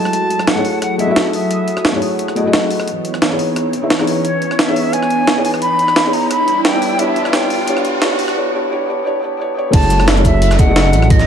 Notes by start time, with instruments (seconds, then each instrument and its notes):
Already playing: analog synth pad F#3 E4 F#4, felt piano G#3 A3 E4 F#4 D#5, flute A5, riser
0.05 cross-stick
0.13 closed hi-hat
0.30 closed hi-hat
0.39 cross-stick
0.47 flute F#5, snare, closed hi-hat
0.55 felt piano A3 E4 F#4 G#4
0.59 felt piano C#5
0.65 open hi-hat
0.82 flute F#5, analog synth pad D#6, cross-stick, closed hi-hat
0.98 felt piano A3 E4 F#4 G#4 D#5, flute E5, closed hi-hat
1.06 felt piano A3 E4 F#4 G#4
1.11 felt piano E5
1.16 snare, closed hi-hat
1.33 flute E5, open hi-hat
1.51 closed hi-hat
1.68 closed hi-hat
1.77 cross-stick
1.85 snare, closed hi-hat
1.92 felt piano A3 E4 F#4 G#4
1.96 felt piano C#5
2.02 open hi-hat
2.19 closed hi-hat
2.28 cross-stick
2.35 felt piano A3 E4 F#4 G#4 D#5, closed hi-hat
2.43 felt piano A3 E4 F#4 G#4
2.47 felt piano D#5
2.53 snare, closed hi-hat
2.71 open hi-hat
2.80 cross-stick
2.88 analog synth pad E3 B3 C#5, closed hi-hat
3.05 closed hi-hat
3.14 cross-stick
3.22 snare, closed hi-hat
3.29 felt piano B3 D#4 E4 G#4
3.33 felt piano C#5
3.39 open hi-hat
3.56 cross-stick, closed hi-hat
3.73 closed hi-hat
3.81 felt piano B3 D#4 E4 G#4 E5
3.90 snare, closed hi-hat
3.98 felt piano B3 D#4 E4 G#4, cross-stick
4.02 felt piano C#5
4.07 open hi-hat
4.25 flute C#5, closed hi-hat
4.42 closed hi-hat
4.51 cross-stick
4.59 flute E5, snare, closed hi-hat
4.66 felt piano B3 D#4 E4 G#4
4.70 felt piano C#5
4.76 open hi-hat
4.93 flute G#5, closed hi-hat
5.03 cross-stick
5.10 closed hi-hat
5.27 snare, closed hi-hat
5.34 felt piano B3 D#4 E4 G#4
5.39 felt piano C#5
5.45 flute G#5, open hi-hat
5.54 cross-stick
5.62 flute B5, closed hi-hat
5.79 closed hi-hat
5.88 cross-stick
5.96 snare, closed hi-hat
6.03 felt piano B3 D#4 E4 G#4
6.08 felt piano C#5
6.13 flute A#5, open hi-hat
6.31 analog synth pad G3 D4, flute B5, cross-stick, closed hi-hat
6.48 closed hi-hat
6.65 flute G5, snare, closed hi-hat
6.72 felt piano B3 D4 E4 G4
6.76 felt piano C#5
6.82 open hi-hat
6.97 felt piano B3 D4 E4 G4, flute E5, closed hi-hat
7.01 felt piano C#5
7.16 closed hi-hat
7.25 cross-stick
7.31 felt piano B3 D4 E4 G4, flute G5, snare, closed hi-hat
7.35 felt piano C#5
7.50 open hi-hat
7.65 felt piano B3 D4 E4 G4, closed hi-hat
7.70 felt piano C#5
7.77 cross-stick
7.85 closed hi-hat
8.00 felt piano B3 D4 E4 G4, snare, closed hi-hat
8.04 felt piano C#5
8.19 open hi-hat
8.28 cross-stick
8.34 felt piano B3 D4 E4 G4
8.39 felt piano C#5
8.51 felt piano B3 D4 E4 G4
8.56 felt piano C#5
8.69 felt piano B3 D4 E4 G4
8.73 felt piano C#5
8.86 felt piano B3 D4 E4 G4
8.90 felt piano C#5
9.03 felt piano B3 D4 E4 G4
9.07 felt piano C#5
9.20 felt piano B3 D4 E4 G4
9.24 felt piano C#5
9.37 felt piano B3 D4 E4 G4
9.41 felt piano C#5
9.54 felt piano B3 D4 E4 G4
9.58 felt piano C#5
9.71 detuned saw bass F#1, analog synth pad F#3 C#4 E4, felt piano G#3 A3 E4 F#4, flute A5, kick, closed hi-hat, crash
9.76 felt piano C#5
9.83 cabasa
9.90 closed hi-hat, cabasa
10.00 cross-stick
10.08 snare, closed hi-hat
10.15 felt piano A3 E4 F#4 G#4, cabasa
10.19 felt piano C#5
10.25 flute E5, kick, closed hi-hat, cabasa
10.42 closed hi-hat
10.51 cross-stick, snare, cabasa
10.58 felt piano A3 E4 F#4 G#4 D#5, flute F#5, kick, closed hi-hat, cabasa
10.66 felt piano A3 E4 F#4 G#4
10.71 felt piano D#5
10.76 snare, closed hi-hat
10.93 detuned saw bass A1, closed hi-hat, cabasa
11.02 cross-stick
11.10 flute D#5, kick, closed hi-hat
11.19 snare, cabasa